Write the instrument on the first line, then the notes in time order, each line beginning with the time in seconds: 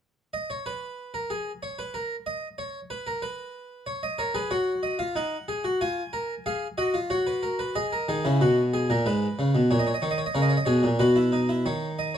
harpsichord
0.33 D#5
0.50 C#5
0.66 B4
1.14 A#4
1.30 G#4
1.63 C#5
1.79 B4
1.94 A#4
2.26 D#5
2.58 C#5
2.90 B4
3.07 A#4
3.22 B4
3.86 C#5
4.03 D#5
4.18 A#4 C#5
4.35 G#4 B4
4.51 F#4 C#5
4.83 D#5
4.99 F4 F5
5.16 D#4 F#5
5.48 G#4
5.64 F#4
5.81 F4 G#5
6.13 A#4
6.46 G#4 F5
6.78 F#4 D#5
6.94 F4
7.10 F#4 C#5
7.27 B4
7.43 A#4
7.59 B4
7.75 G#4 D#5
7.92 A#4
8.09 D#3 G#4
8.25 C#3 E4
8.41 B2 F#4
8.73 G#4
8.90 A#2 A#4
9.06 G#2 B4
9.39 C#3
9.55 B2
9.71 A#2 C#5
9.79 D#5
9.87 C#5
9.94 D#5
10.02 D#3 C#5
10.11 D#5
10.18 C#5
10.26 D#5
10.34 C#3 A#4 C#5
10.42 D#5
10.50 C#5
10.57 D#5
10.65 B2 G#4 C#5
10.83 A#2
10.99 B2 F#4 B4
11.16 E4
11.32 D#4
11.49 E4
11.66 D#3 C#5
11.99 D#5
12.14 C#5